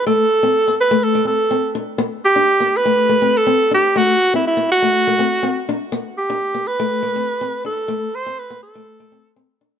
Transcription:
X:1
M:4/4
L:1/16
Q:1/4=123
K:Ador
V:1 name="Alto saxophone"
A6 B2 A2 A4 z2 | z2 G4 B4- B A3 G2 | F3 E E2 F8 z2 | z2 G4 B8 A2- |
A2 c2 B2 A6 z4 |]
V:2 name="Steel-string acoustic guitar"
A,2 z C2 B,2 A,2 A, C2 C2 D2 | B,2 z D2 B,2 A,2 A, C2 C2 D2 | A,2 z C2 B,2 A,2 A, C2 C2 D2 | B,2 z D2 B,2 A,2 A, C2 C2 D2 |
A,2 z C2 B,2 A,2 A, C2 C2 D2 |]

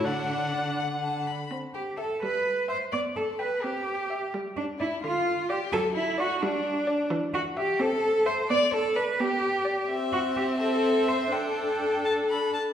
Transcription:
X:1
M:6/8
L:1/8
Q:3/8=86
K:D
V:1 name="Violin"
f4- f z | [K:C] z2 e z2 e | z2 g z2 e | z2 d z2 d |
z2 d z2 d | [K:G] z2 e z2 e | z2 d z2 d | e3 e3 |
g3 a b a |]
V:2 name="Violin"
f3 f a b | [K:C] z G A B2 c | d A B G3 | z D E F2 G |
A E ^F D3 | [K:G] z F G A2 c | d A B G3 | z F G A2 c |
A4- A z |]
V:3 name="Cello"
D,4- D, z | [K:C] z G A B2 c | d A B G3 | z D E F2 G |
A E ^F D3 | [K:G] z F G A2 c | d A B G3 | z F G A2 c |
A4- A z |]
V:4 name="Viola"
D3 z3 | [K:C] C3 G,3 | B,3 C3 | G,3 D,3 |
^F,3 G,3 | [K:G] E,3 C3 | B,3 B,3 | C6 |
D4- D z |]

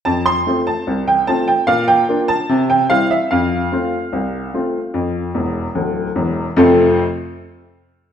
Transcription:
X:1
M:2/4
L:1/16
Q:1/4=74
K:F
V:1 name="Upright piano"
a c'2 a2 g a g | f g2 a2 g f e | f8- | f4 z4 |
[F,,C,A,CFA]2 z6 |]
V:2 name="Upright piano"
F,,2 [A,CF]2 C,,2 [A,CF]2 | B,,2 [B,DF]2 C,2 [G,CE]2 | F,,2 [A,CF]2 C,,2 [A,CF]2 | F,,2 [E,,,E,,]2 [D,,,D,,]2 [E,,,E,,]2 |
z8 |]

